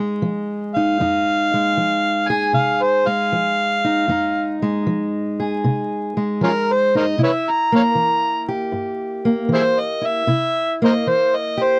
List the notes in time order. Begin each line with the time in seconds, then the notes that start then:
Already playing: C3 G#3 D#4 G#4
0.22 F3
0.75 D#4 F5
1.00 F2 D#4
1.54 G#3
1.77 F3
2.28 G#4 G#5
2.53 C3 F5
2.82 C5
3.07 G#3 F5
3.32 F3
3.84 D#4
4.08 F2 D#4
4.62 G#3
4.87 F3
5.40 G#4
5.64 C3
6.17 G#3
6.41 F3 C#4 F4 A#4
6.72 C5
6.95 D#4 A#4 C5 D#5
7.18 C3 E4
7.23 B4 C#5 E5
7.50 A#5
7.72 A#3 C#5 F5 A#5
7.95 E3
8.48 G4
8.72 G2
9.25 A#3
9.49 E3
9.54 E4 G#4 C5
9.79 D#5
10.01 E4
10.07 E5
10.27 C3 E4
10.82 A#3 A#4 C5 D#5
11.07 E3 C5
11.36 D#5
11.57 G4
11.63 C5